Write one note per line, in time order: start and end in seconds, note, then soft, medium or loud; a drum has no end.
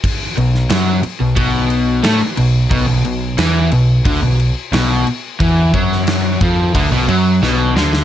0.04 kick medium
0.04 crash medium
0.37 0.69 B1 medium
0.37 0.64 B2 medium
0.37 crash medium
0.55 snare soft
0.69 1.02 F#2 loud
0.69 1.03 F#3 loud
0.69 snare loud
0.69 crash medium
1.03 muted overdriven electric guitar stroke medium
1.03 muted picked electric bass stroke soft
1.03 crash medium
1.20 1.36 B1 medium
1.20 1.35 B2 medium
1.36 2.00 B1 medium
1.36 2.03 B2 loud
1.36 kick loud
1.36 crash medium
1.70 crash medium
2.03 2.20 A2 loud
2.03 2.20 A3 loud
2.03 snare loud
2.03 crash medium
2.21 muted overdriven electric guitar stroke medium
2.21 muted picked electric bass stroke soft
2.37 2.70 B1 medium
2.37 2.65 B2 medium
2.37 crash medium
2.71 2.87 B1 medium
2.71 2.87 B2 loud
2.71 kick loud
2.71 crash medium
2.88 3.04 B1 medium
2.88 3.04 B2 medium
3.05 3.36 B1 medium
3.05 3.32 B2 medium
3.05 crash medium
3.38 3.70 E2 loud
3.38 3.71 E3 loud
3.38 snare loud
3.38 crash medium
3.72 4.03 B1 medium
3.72 3.99 B2 medium
3.72 crash medium
4.05 4.21 D2 loud
4.05 4.22 D3 loud
4.05 kick loud
4.05 crash medium
4.22 4.53 B1 medium
4.22 4.49 B2 medium
4.39 crash medium
4.72 5.04 B1 loud
4.72 5.06 B2 loud
4.72 snare loud
4.72 crash medium
5.07 crash medium
5.40 5.71 E2 medium
5.40 5.73 E3 loud
5.40 kick loud
5.40 crash medium
5.74 6.37 F#2 medium
5.74 6.40 F#3 loud
5.74 kick medium
5.74 crash medium
5.92 snare soft
6.07 snare loud
6.07 crash medium
6.41 6.72 F2 medium
6.41 6.74 F3 loud
6.41 kick loud
6.41 crash medium
6.74 6.90 D2 loud
6.74 6.90 D3 loud
6.74 kick loud
6.74 crash medium
6.91 7.07 B1 loud
6.91 7.07 B2 loud
7.08 7.39 F#2 loud
7.08 7.41 F#3 loud
7.08 crash medium
7.42 7.73 B1 loud
7.42 7.75 B2 loud
7.42 snare medium
7.76 8.04 D2 medium
7.76 8.04 D3 loud
7.76 snare loud
7.93 snare medium